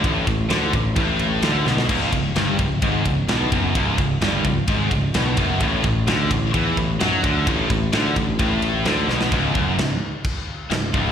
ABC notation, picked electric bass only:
X:1
M:4/4
L:1/8
Q:1/4=129
K:A
V:1 name="Picked electric bass" clef=bass
A,,, A,,, D,, A,,, A,,,2 D,, B,,, | C,,, C,,, =G,,, C,,, ^G,,, C,,, B,,, F,,, | C,,, C,,, =G,,, C,,, ^G,,, C,,, B,,, F,,, | A,,, A,,, D,, A,,, E,, A,,, F,, D,, |
A,,, A,,, D,, A,,, A,,,2 D,, B,,, | C,,, F,,, C,,, z3 C,,, C,,, |]